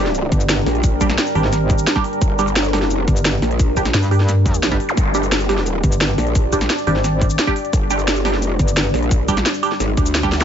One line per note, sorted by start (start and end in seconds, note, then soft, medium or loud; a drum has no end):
0.00 0.30 G1 loud
0.00 0.99 G3 medium
0.00 10.44 G3 medium
0.00 0.99 D4 medium
0.00 10.44 D4 medium
0.00 0.99 G4 medium
0.00 10.44 G4 medium
0.00 4.95 A#4 medium
0.06 snare soft
0.15 closed hi-hat loud
0.15 cabasa soft
0.32 0.65 G1 loud
0.32 kick loud
0.32 closed hi-hat medium
0.32 cabasa soft
0.41 cabasa medium
0.49 snare loud
0.49 closed hi-hat loud
0.49 cabasa medium
0.66 1.17 A#1 loud
0.66 snare soft
0.66 open hi-hat medium
0.75 closed hi-hat soft
0.84 kick loud
0.84 closed hi-hat loud
0.84 cabasa soft
1.01 1.09 G3 loud
1.01 1.09 D4 medium
1.01 1.09 G4 loud
1.01 kick medium
1.01 closed hi-hat medium
1.01 cabasa medium
1.10 snare medium
1.10 cabasa soft
1.18 snare loud
1.18 closed hi-hat loud
1.18 cabasa medium
1.27 closed hi-hat soft
1.27 cabasa soft
1.35 1.86 G#1 loud
1.35 1.43 G3 loud
1.35 1.43 D4 medium
1.35 1.43 G4 loud
1.35 open hi-hat medium
1.44 snare soft
1.53 snare soft
1.53 closed hi-hat loud
1.53 cabasa medium
1.70 kick loud
1.70 closed hi-hat medium
1.70 cabasa soft
1.78 cabasa medium
1.87 snare loud
1.87 closed hi-hat loud
1.87 cabasa soft
1.96 2.04 G3 loud
1.96 2.04 D4 medium
1.96 2.04 G4 loud
1.96 kick medium
1.96 snare soft
2.04 open hi-hat medium
2.13 closed hi-hat soft
2.21 2.81 G1 loud
2.21 kick loud
2.21 closed hi-hat loud
2.21 cabasa soft
2.39 2.47 G3 loud
2.39 2.47 D4 medium
2.39 2.47 G4 loud
2.39 closed hi-hat medium
2.39 cabasa medium
2.47 cabasa soft
2.56 snare loud
2.56 closed hi-hat medium
2.56 cabasa soft
2.65 closed hi-hat soft
2.65 cabasa soft
2.73 3.75 G3 medium
2.73 3.75 D4 medium
2.73 3.75 G4 medium
2.73 snare medium
2.73 open hi-hat medium
2.81 3.06 F#1 loud
2.81 snare soft
2.91 closed hi-hat loud
2.91 cabasa medium
3.08 3.41 G1 loud
3.08 kick loud
3.08 closed hi-hat medium
3.08 cabasa soft
3.16 cabasa medium
3.25 snare loud
3.25 closed hi-hat loud
3.25 cabasa medium
3.42 3.93 A#1 loud
3.42 snare soft
3.42 open hi-hat medium
3.51 closed hi-hat soft
3.59 kick loud
3.59 closed hi-hat medium
3.59 cabasa soft
3.77 3.85 G3 loud
3.77 3.85 D4 medium
3.77 3.85 G4 loud
3.77 kick medium
3.77 closed hi-hat medium
3.77 cabasa medium
3.85 snare medium
3.85 closed hi-hat soft
3.85 cabasa soft
3.94 4.79 G2 medium
3.94 snare loud
3.94 closed hi-hat medium
3.94 cabasa medium
4.03 closed hi-hat soft
4.03 cabasa soft
4.11 4.19 G3 loud
4.11 4.19 D4 medium
4.11 4.19 G4 loud
4.11 open hi-hat medium
4.20 snare soft
4.29 snare soft
4.29 closed hi-hat medium
4.29 cabasa soft
4.46 kick loud
4.46 closed hi-hat medium
4.46 cabasa soft
4.54 cabasa medium
4.63 snare loud
4.63 closed hi-hat medium
4.63 cabasa soft
4.71 4.79 G3 loud
4.71 4.79 D4 medium
4.71 4.79 G4 loud
4.71 kick medium
4.71 snare soft
4.71 closed hi-hat soft
4.80 open hi-hat medium
4.89 closed hi-hat soft
4.89 zap medium
4.97 5.82 G1 loud
4.97 10.44 D5 medium
4.97 kick loud
4.97 closed hi-hat medium
4.97 cabasa medium
5.15 5.23 G3 loud
5.15 5.23 D4 medium
5.15 5.23 G4 loud
5.15 closed hi-hat medium
5.15 cabasa medium
5.23 cabasa soft
5.32 snare loud
5.32 closed hi-hat medium
5.32 cabasa medium
5.41 closed hi-hat soft
5.41 cabasa soft
5.49 6.50 G3 medium
5.49 6.50 D4 medium
5.49 6.50 G4 medium
5.49 snare soft
5.49 open hi-hat medium
5.58 snare soft
5.66 closed hi-hat medium
5.66 cabasa medium
5.84 6.17 G1 loud
5.84 kick loud
5.84 closed hi-hat medium
5.84 cabasa soft
5.92 cabasa medium
6.01 snare loud
6.01 closed hi-hat medium
6.01 cabasa medium
6.18 6.68 A#1 loud
6.18 snare soft
6.18 open hi-hat medium
6.27 closed hi-hat soft
6.35 kick loud
6.35 closed hi-hat medium
6.35 cabasa medium
6.53 6.60 G3 loud
6.53 6.61 D4 medium
6.53 6.61 G4 loud
6.53 kick medium
6.53 closed hi-hat medium
6.53 cabasa medium
6.61 snare medium
6.61 cabasa soft
6.70 snare loud
6.70 closed hi-hat loud
6.70 cabasa medium
6.78 closed hi-hat soft
6.78 cabasa soft
6.87 7.37 G#1 loud
6.87 6.95 G3 loud
6.87 6.95 D4 medium
6.87 6.95 G4 loud
6.87 open hi-hat medium
6.96 snare soft
7.04 snare soft
7.04 closed hi-hat loud
7.04 cabasa medium
7.21 kick loud
7.21 closed hi-hat medium
7.21 cabasa soft
7.30 cabasa medium
7.39 snare loud
7.39 closed hi-hat loud
7.39 cabasa medium
7.47 7.55 G3 loud
7.47 7.55 D4 medium
7.47 7.55 G4 loud
7.47 kick medium
7.47 snare soft
7.56 open hi-hat medium
7.65 closed hi-hat soft
7.73 8.33 G1 loud
7.73 kick loud
7.73 closed hi-hat loud
7.73 cabasa medium
7.90 7.98 G3 loud
7.90 7.98 D4 medium
7.90 7.98 G4 loud
7.90 closed hi-hat medium
7.90 cabasa medium
7.99 cabasa soft
8.08 snare loud
8.08 closed hi-hat loud
8.08 cabasa medium
8.16 closed hi-hat soft
8.16 cabasa soft
8.25 9.26 G3 medium
8.25 9.26 D4 medium
8.25 9.26 G4 medium
8.25 snare soft
8.25 open hi-hat medium
8.33 8.58 F#1 loud
8.33 snare soft
8.42 closed hi-hat loud
8.42 cabasa medium
8.59 8.93 G1 loud
8.59 kick loud
8.59 closed hi-hat medium
8.59 cabasa soft
8.68 cabasa medium
8.77 snare loud
8.77 closed hi-hat loud
8.77 cabasa medium
8.94 9.44 A#1 loud
8.94 snare soft
8.94 open hi-hat medium
9.03 closed hi-hat soft
9.11 kick loud
9.11 closed hi-hat loud
9.11 cabasa medium
9.28 9.36 G3 loud
9.28 9.36 D4 medium
9.28 9.36 G4 loud
9.28 kick medium
9.28 closed hi-hat medium
9.28 cabasa medium
9.37 snare medium
9.37 closed hi-hat soft
9.37 cabasa soft
9.46 snare loud
9.46 closed hi-hat loud
9.46 cabasa soft
9.54 closed hi-hat soft
9.54 cabasa soft
9.63 9.71 G3 loud
9.63 9.71 D4 medium
9.63 9.71 G4 loud
9.63 open hi-hat medium
9.72 snare soft
9.80 9.96 G#1 loud
9.80 snare soft
9.80 closed hi-hat loud
9.80 cabasa medium
9.97 10.44 D2 loud
9.97 kick loud
9.97 closed hi-hat medium
9.97 cabasa soft
10.06 cabasa medium
10.15 snare loud
10.15 closed hi-hat loud
10.15 cabasa medium
10.23 10.31 G3 loud
10.23 10.31 D4 medium
10.23 10.31 G4 loud
10.23 kick medium
10.23 snare soft
10.23 closed hi-hat soft
10.32 snare medium
10.32 open hi-hat medium
10.40 snare medium
10.40 closed hi-hat soft
10.40 zap medium
10.40 cabasa soft